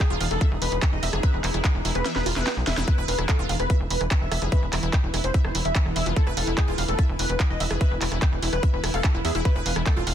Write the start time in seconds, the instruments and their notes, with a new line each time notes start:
Already playing: synth drone E3 D#4, ambient pad E3 G#4
0.00 analog synth lead G#4, kick, cross-stick, clap, closed hi-hat
0.10 analog synth bass E1, synth arpeggio sound F4
0.21 analog synth bass E1, synth arpeggio sound F5, open hi-hat
0.31 analog synth bass E1, analog synth lead A4, closed hi-hat
0.41 synth arpeggio sound E5, kick, cross-stick, closed hi-hat
0.51 analog synth bass E1
0.62 analog synth bass E1, analog synth lead B4, open hi-hat
0.72 analog synth bass E1, closed hi-hat
0.82 kick, cross-stick, clap, closed hi-hat
0.92 analog synth bass E1, analog synth lead D#5
1.03 analog synth bass E1, wobble bass B3, synth arpeggio sound E5, open hi-hat
1.13 analog synth bass F1, wobble bass B3, synth arpeggio sound G#4, cross-stick, closed hi-hat
1.23 wobble bass B3, analog synth lead B4, synth arpeggio sound E5, kick, closed hi-hat
1.34 analog synth bass E1
1.44 analog synth bass E1, synth arpeggio sound E4, clap, open hi-hat
1.54 analog synth bass E1, synth arpeggio sound E4, cross-stick, closed hi-hat
1.64 kick, clap, closed hi-hat
1.75 analog synth bass E1
1.85 analog synth bass E1, synth arpeggio sound E4, open hi-hat
1.95 analog synth bass E1, analog synth lead B4, cross-stick, closed hi-hat
2.05 synth arpeggio sound E5, snare, closed hi-hat
2.16 analog synth bass E1, analog synth lead B4, snare
2.26 analog synth bass E1, wobble bass E4, synth arpeggio sound F4, open hi-hat
2.36 analog synth bass E1, wobble bass E4, synth arpeggio sound E4, analog synth lead B4, snare, closed hi-hat
2.47 snare, clap, closed hi-hat
2.57 analog synth bass B1
2.67 analog synth bass E1, synth arpeggio sound E4, analog synth lead E5, snare, open hi-hat
2.77 analog synth bass E1, synth arpeggio sound E4, snare, closed hi-hat
2.88 synth drone E3 E4, synth arpeggio sound E4, analog synth lead B4, kick, cross-stick, closed hi-hat
2.98 analog synth bass E1, synth arpeggio sound B4, ambient pad B4
3.08 analog synth bass E1, analog synth lead B4, synth arpeggio sound F5, open hi-hat
3.19 analog synth bass E1, synth arpeggio sound E4, cross-stick, closed hi-hat
3.29 analog synth lead A4, kick, clap, closed hi-hat
3.39 analog synth bass E1, synth arpeggio sound F4
3.49 analog synth bass E1, synth arpeggio sound F5, open hi-hat
3.60 analog synth bass E1, analog synth lead B4, cross-stick, closed hi-hat
3.70 synth arpeggio sound E5, kick, closed hi-hat
3.80 analog synth bass E1
3.90 analog synth bass E1, analog synth lead B4, open hi-hat
4.01 analog synth bass E1, cross-stick, closed hi-hat
4.11 kick, clap, closed hi-hat
4.21 analog synth bass E1, analog synth lead E5
4.32 analog synth bass E1, wobble bass B3, synth arpeggio sound E5, cross-stick, open hi-hat
4.42 analog synth bass F1, wobble bass B3, synth arpeggio sound G#4, closed hi-hat
4.52 wobble bass B3, analog synth lead B4, synth arpeggio sound E5, kick, closed hi-hat
4.62 analog synth bass E1
4.73 analog synth bass E1, synth arpeggio sound E4, cross-stick, clap, open hi-hat
4.83 analog synth bass E1, synth arpeggio sound E4, closed hi-hat
4.93 kick, clap, closed hi-hat
5.03 analog synth bass E1
5.14 analog synth bass E1, synth arpeggio sound E4, cross-stick, open hi-hat
5.24 analog synth bass E1, analog synth lead C5, closed hi-hat
5.34 wobble bass B3, synth arpeggio sound E5, kick, closed hi-hat
5.45 analog synth bass E1, wobble bass B3, analog synth lead C5, cross-stick
5.55 analog synth bass E1, synth arpeggio sound E4, open hi-hat
5.65 analog synth bass E1, analog synth lead E5, closed hi-hat
5.75 kick, clap, closed hi-hat
5.86 analog synth bass E1, wobble bass B3, cross-stick
5.96 analog synth bass E1, synth arpeggio sound E4, analog synth lead E5, open hi-hat
6.06 analog synth bass F1, synth arpeggio sound F4, closed hi-hat
6.16 synth arpeggio sound E4, analog synth lead A4, kick, closed hi-hat
6.27 analog synth bass E1, synth arpeggio sound B4, cross-stick
6.37 analog synth bass E1, analog synth lead A4, synth arpeggio sound F5, open hi-hat
6.47 analog synth bass E1, synth arpeggio sound E4, closed hi-hat
6.58 analog synth lead G#4, kick, cross-stick, clap, closed hi-hat
6.68 analog synth bass E1, synth arpeggio sound F4
6.78 analog synth bass E1, synth arpeggio sound F5, open hi-hat
6.88 analog synth bass E1, analog synth lead A4, closed hi-hat
6.99 synth arpeggio sound E5, kick, cross-stick, closed hi-hat
7.09 analog synth bass E1
7.19 analog synth bass E1, analog synth lead B4, open hi-hat
7.29 analog synth bass E1, closed hi-hat
7.40 kick, cross-stick, clap, closed hi-hat
7.50 analog synth bass E1, analog synth lead D#5
7.60 analog synth bass E1, wobble bass B3, synth arpeggio sound E5, open hi-hat
7.71 analog synth bass F1, wobble bass B3, synth arpeggio sound G#4, cross-stick, closed hi-hat
7.81 wobble bass B3, analog synth lead B4, synth arpeggio sound E5, kick, closed hi-hat
7.91 analog synth bass E1
8.01 analog synth bass E1, synth arpeggio sound E4, clap, open hi-hat
8.12 analog synth bass E1, synth arpeggio sound E4, cross-stick, closed hi-hat
8.22 kick, clap, closed hi-hat
8.32 analog synth bass E1
8.42 analog synth bass E1, synth arpeggio sound E4, open hi-hat
8.53 analog synth bass E1, analog synth lead B4, cross-stick, closed hi-hat
8.63 synth arpeggio sound E5, kick, closed hi-hat
8.73 analog synth bass E1, analog synth lead B4
8.84 analog synth bass E1, wobble bass E4, synth arpeggio sound E4, cross-stick, open hi-hat
8.94 analog synth bass E1, wobble bass E4, analog synth lead A4, synth arpeggio sound F5, closed hi-hat
9.04 kick, clap, closed hi-hat
9.14 analog synth bass E1, synth arpeggio sound E4
9.25 analog synth bass E2, analog synth lead G#4, synth arpeggio sound E5, cross-stick, open hi-hat
9.35 analog synth bass E1, synth arpeggio sound E4, closed hi-hat
9.45 synth drone D#4, synth arpeggio sound E4, analog synth lead B4, kick, cross-stick, closed hi-hat
9.55 analog synth bass E1, ambient pad G#4, synth arpeggio sound B4
9.66 analog synth bass E1, analog synth lead B4, synth arpeggio sound F5, open hi-hat
9.76 analog synth bass E1, synth arpeggio sound E4, cross-stick, closed hi-hat
9.86 analog synth lead A4, kick, clap, closed hi-hat
9.97 analog synth bass E1, synth arpeggio sound F4
10.07 analog synth bass E1, synth arpeggio sound F5, open hi-hat